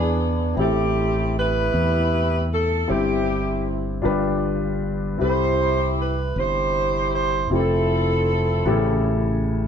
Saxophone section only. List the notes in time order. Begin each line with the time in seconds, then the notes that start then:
Already playing: B3 D4 G#4
0.58 C4 E4 G4
1.37 E4 G4 B4
2.54 A4
2.89 C4 E4 G4
5.22 E4 G4 C5
6.01 B4
6.38 E4 G4 C5
7.14 C5
7.54 C4 E4 A4